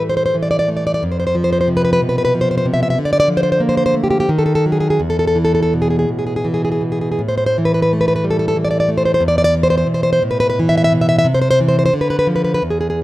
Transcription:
Already playing: A2 E3 A3
0.02 G3
0.10 C5
0.17 C5
0.26 C5
0.34 E3
0.43 D5
0.51 D5
0.59 D5
0.68 A3
0.77 D5
0.87 D5
0.94 D5
1.03 F2
1.12 C5
1.20 C5
1.27 C5
1.35 F3
1.44 C5
1.53 C5
1.61 C5
1.68 C3
1.77 B4
1.85 B4
1.93 B4
2.02 B2
2.09 B4
2.18 B4
2.25 B4
2.34 F3
2.41 C5
2.51 C5
2.58 C5
2.65 C3
2.74 E5
2.83 E5
2.90 E5
2.98 D3
3.05 D5
3.13 D5
3.20 D5
3.28 F3
3.37 C5
3.43 C5
3.52 C5
3.60 A#3
3.69 C5
3.77 C5
3.86 C5
3.94 A3
4.04 G4
4.11 G4
4.20 G4
4.29 D#3
4.39 A4
4.46 A4
4.55 A4
4.66 F#3
4.72 G#4
4.80 G#4
4.90 G#4
5.00 E2
5.10 A4
5.19 A4
5.27 A4
5.35 E3
5.45 A4
5.55 A4
5.63 A4
5.73 B2
5.82 G#4
5.90 G#4
5.99 G#4
6.09 A2
6.19 G#4
6.27 G#4
6.36 G#4
6.45 E3
6.54 G#4
6.65 G#4
6.72 G#4
6.81 B2
6.92 G#4
7.01 G#4
7.12 G#4
7.19 A2
7.29 C5
7.38 C5
7.46 C5
7.58 E3
7.65 B4
7.74 B4
7.82 B4
7.93 A3
8.01 B4
8.08 B4
8.16 B4
8.24 G3
8.31 A4
8.39 A4
8.48 A4
8.56 E3
8.65 D5
8.71 D5
8.80 D5
8.88 A3
8.98 C5
9.05 C5
9.14 C5
9.21 E2
9.28 D5
9.38 D5
9.44 D5
9.55 E3
9.63 C5
9.70 C5
9.87 B2
9.94 C5
10.03 C5
10.13 C5
10.23 A2
10.31 B4
10.40 B4
10.50 B4
10.59 E3
10.69 E5
10.78 E5
10.84 E5
10.92 B2
11.01 E5
11.09 E5
11.19 E5
11.25 C3
11.34 C5
11.42 C5
11.51 C5
11.60 E3
11.69 C5
11.79 C5
11.86 C5
11.93 D3
12.01 B4
12.10 B4
12.19 B4
12.27 F3
12.36 B4
12.45 B4
12.54 B4
12.62 E2
12.70 G#4
12.81 G#4
12.90 G#4

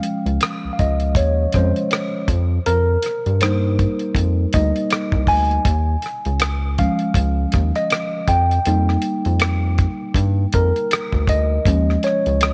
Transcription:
Already playing: F3 G#3 C#4 F5
0.03 closed hi-hat
0.26 C#2, closed hi-hat
0.41 cross-stick, closed hi-hat
0.65 C#2
0.73 F5
0.79 C#2 D#5, kick, closed hi-hat
1.00 closed hi-hat
1.15 D#2 C#5, kick, closed hi-hat
1.52 F2 F3 G#3 C5, kick, cross-stick, closed hi-hat
1.57 C#4
1.76 closed hi-hat
1.91 cross-stick, closed hi-hat
2.28 F2, kick, closed hi-hat
2.66 F2 A#4, closed hi-hat
3.02 cross-stick, closed hi-hat
3.26 G2, closed hi-hat
3.41 G3 A#3 D#4 C5, cross-stick, closed hi-hat
3.79 kick, closed hi-hat
3.99 closed hi-hat
4.15 F2, kick, closed hi-hat
4.53 D2 G3 A#3 D#4 D#5, kick, cross-stick, closed hi-hat
4.76 closed hi-hat
4.90 cross-stick, closed hi-hat
5.12 C2, kick
5.27 D2 G#5, kick, open hi-hat
5.51 closed hi-hat
5.65 D#2, kick, closed hi-hat
6.02 cross-stick, closed hi-hat
6.25 C#2, closed hi-hat
6.40 cross-stick, closed hi-hat
6.78 F3 G#3 C#4 F5, kick, closed hi-hat
6.99 closed hi-hat
7.14 C#2, kick, closed hi-hat
7.52 D#2, kick, cross-stick, closed hi-hat
7.75 D#5, cross-stick, closed hi-hat
7.90 cross-stick, closed hi-hat
8.28 F2 G5, kick, closed hi-hat
8.51 closed hi-hat
8.65 F2 G3 A#3 D#4, closed hi-hat
8.89 cross-stick
9.02 closed hi-hat
9.25 F2, closed hi-hat
9.40 cross-stick, closed hi-hat
9.78 kick, closed hi-hat
10.14 G2, kick, closed hi-hat
10.53 F2 A#4, kick, closed hi-hat
10.76 closed hi-hat
10.91 cross-stick, closed hi-hat
11.12 D2, kick
11.27 D2 D#5, kick, closed hi-hat
11.65 D#2 F3 G#3 C#4, kick, closed hi-hat
11.90 cross-stick
12.03 C#5, cross-stick, closed hi-hat
12.26 C#2, closed hi-hat
12.41 cross-stick, closed hi-hat

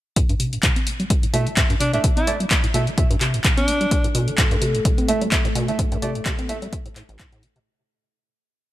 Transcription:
0.16 A2, kick, closed hi-hat
0.29 G2, closed hi-hat
0.40 C3, open hi-hat
0.53 A2, closed hi-hat
0.63 C3, kick, clap, closed hi-hat
0.76 C4, closed hi-hat
0.87 A3, open hi-hat
1.00 G3, closed hi-hat
1.10 A3, kick, closed hi-hat
1.23 A2, closed hi-hat
1.34 B2 A3 E4 E5, open hi-hat
1.46 E3, closed hi-hat
1.57 A2, kick, clap, closed hi-hat
1.70 G2, closed hi-hat
1.80 C3 D4, open hi-hat
1.93 A2 A3 D4 E4 E5, closed hi-hat
2.04 C3, kick, closed hi-hat
2.17 C4 E4, closed hi-hat
2.27 A3 E4 D5, open hi-hat
2.40 G3, closed hi-hat
2.51 A3, kick, clap, closed hi-hat
2.64 A2, closed hi-hat
2.74 B2 A3 E4 E5, open hi-hat
2.87 E3, closed hi-hat
2.98 A2, kick, closed hi-hat
3.10 G2, closed hi-hat
3.21 C3, clap, open hi-hat
3.34 A2, closed hi-hat
3.44 C3, kick, clap, closed hi-hat
3.57 C4 D4, closed hi-hat
3.68 A3, open hi-hat
3.81 G3, closed hi-hat
3.91 A3 A4, kick, closed hi-hat
4.04 A2, closed hi-hat
4.15 B2, open hi-hat
4.28 E3, closed hi-hat
4.38 A2, kick, clap, closed hi-hat
4.51 G2, closed hi-hat
4.62 C3, open hi-hat
4.75 A2, closed hi-hat
4.85 C3, kick, closed hi-hat
4.98 C4, closed hi-hat
5.08 A3 E4 E5, open hi-hat
5.21 G3, closed hi-hat
5.32 A3, kick, clap, closed hi-hat
5.45 A2, closed hi-hat
5.55 B2, open hi-hat
5.68 E3 A3 E4 E5, closed hi-hat
5.79 A2, kick, closed hi-hat
5.92 G2, closed hi-hat
6.02 C3 A3 E4 D5, open hi-hat
6.15 A2, closed hi-hat
6.26 C3, kick, clap, closed hi-hat
6.39 C4, closed hi-hat
6.49 A3 E4 E5, open hi-hat
6.62 G3, closed hi-hat
6.73 A3, kick, closed hi-hat
6.86 A2, closed hi-hat
6.96 A2, clap, open hi-hat
7.09 A1, closed hi-hat
7.19 A2, kick, clap, closed hi-hat
7.32 A2, closed hi-hat
7.43 C3, open hi-hat
7.56 C3, closed hi-hat

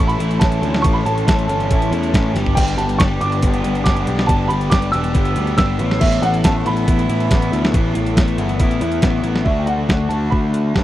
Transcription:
Already playing: A2 E3 A3 C#4 E4 A4 C#5 A5
0.00 A1 A3 C#4 E4 A4
0.07 B5, closed hi-hat
0.19 A1 E3 A3 C#4 A4, closed hi-hat
0.31 closed hi-hat
0.39 A1 E3 A3 C#4 A5, kick, snare, closed hi-hat
0.44 A4
0.52 closed hi-hat
0.61 D2 A3 C#4 A4, closed hi-hat
0.74 snare
0.82 A1 A2 E3 A3 C#4 C#6, kick, closed hi-hat
0.86 A4
0.93 B5
1.05 A1 A3 C#4 A4 A5, closed hi-hat
1.18 closed hi-hat
1.26 A1 E3 A3 C#4 A4, kick, snare, closed hi-hat
1.39 closed hi-hat
1.48 G1 E3 A3 C#4 A4, closed hi-hat
1.60 closed hi-hat
1.69 A1 E3 A3 C#4 E4 A4, kick, closed hi-hat
1.82 closed hi-hat
1.91 E2 E3 A3 C#4 A4, closed hi-hat
2.03 closed hi-hat
2.13 A1 E3 A3 C#4 A4, kick, snare, closed hi-hat
2.34 G1 G3 B3 D4 G4 B4 D5 A5, snare, closed hi-hat
2.46 floor tom
2.55 G1 G3 B3 D4 G4 G5, kick, closed hi-hat, crash
2.68 closed hi-hat
2.78 G1 D4 G4 A5, closed hi-hat
2.89 closed hi-hat
2.99 G1 G3 B3 D4 C#6, kick, snare, closed hi-hat
3.03 G4
3.21 G1 B3 D4 G4 D6, closed hi-hat
3.32 closed hi-hat
3.42 G1 B3 D4 G4, kick, closed hi-hat
3.54 closed hi-hat
3.64 G1 G3 B3 D4 G4, closed hi-hat
3.75 closed hi-hat
3.84 G1 B3 D4 D6, kick, snare, closed hi-hat
3.88 G4
3.97 closed hi-hat
4.07 B1 G3 D4 G4, closed hi-hat
4.19 snare
4.27 G1 G3 B3 D4 G4 A5, kick, closed hi-hat
4.48 G1 G4 B5, closed hi-hat
4.52 D4
4.61 closed hi-hat
4.70 G1 G3 B3 D4 D6, kick, snare, closed hi-hat
4.74 G4
4.82 closed hi-hat
4.92 E1 B3 D4 G4 E6, closed hi-hat
5.04 closed hi-hat
5.14 G1 B3 D4 G4, kick, closed hi-hat
5.25 closed hi-hat
5.35 D2 G3 B3 D4 G4, closed hi-hat
5.47 closed hi-hat
5.57 G1 B3 D4 G4 E6, kick, snare, closed hi-hat
5.79 A1 A2 E3 B3 E4 A4 E5 B5, closed hi-hat
5.91 snare
6.00 A1 A2 E3 B3 E4 E5, kick, crash
6.12 closed hi-hat
6.22 A1 B3 E4 F#5, closed hi-hat
6.34 closed hi-hat
6.44 A1 E3 A3 B3 E4 A5, kick, snare, closed hi-hat
6.65 A1 B3 E4 B5, closed hi-hat
6.69 E3
6.77 closed hi-hat
6.88 A1 E3 B3 E4, kick, closed hi-hat
6.99 closed hi-hat
7.09 A1 E3 A3 B3 E4, closed hi-hat
7.20 closed hi-hat
7.30 A1 E3 B3 E4, kick, snare, closed hi-hat
7.42 closed hi-hat
7.52 D2 A3 B3 E4, closed hi-hat
7.65 snare
7.73 A1 A2 E3 B3 E4, kick, closed hi-hat
7.95 A1 B3 E4, closed hi-hat
8.06 closed hi-hat
8.16 A1 E3 A3 B3 E4, kick, snare, closed hi-hat
8.28 closed hi-hat
8.38 G1 E3 B3 E4, closed hi-hat
8.49 closed hi-hat
8.60 A1 E3 B3 E4, kick, closed hi-hat
8.71 closed hi-hat
8.81 E2 E3 A3 B3 E4, closed hi-hat
8.92 closed hi-hat
9.02 A1 E3 B3 E4, kick, snare, closed hi-hat
9.23 A1 A3 B3 E4, closed hi-hat
9.36 snare
9.45 D2 D3 A3 D4 F#4 E5, kick
9.59 G5
9.66 F#5, closed hi-hat
9.89 D2, kick, snare
10.09 D2 D4 F#4 A5, closed hi-hat
10.13 A3
10.30 D2 B5, kick
10.54 closed hi-hat
10.74 G2 A3 D4 F#4, kick, snare

